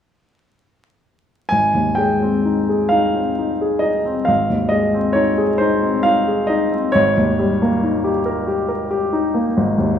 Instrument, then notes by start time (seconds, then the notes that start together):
grand piano
1.49 G#1 G#5
1.74 D#2
1.95 G#3 G5
2.22 C4
2.45 D#4
2.69 G#4
2.89 D#4 F5
3.14 C4
3.38 D#4
3.61 G#4
3.79 D#4 D#5
4.05 C4
4.25 G#1 F5
4.49 D#2
4.69 G#3 D#5
4.94 C4
5.13 D#4 C#5
5.38 G#4
5.58 D#4 C5
5.83 C4
6.03 D#4 F5
6.28 G#4
6.47 D#4 D#5
6.72 C4
6.92 G#1 C#5
7.17 D#2
7.39 G3
7.62 A#3
7.84 D#4
8.04 G4
8.26 A#4
8.47 G4
8.68 A#4
8.91 G4
9.13 D#4
9.34 A#3
9.57 G#1
9.78 D#2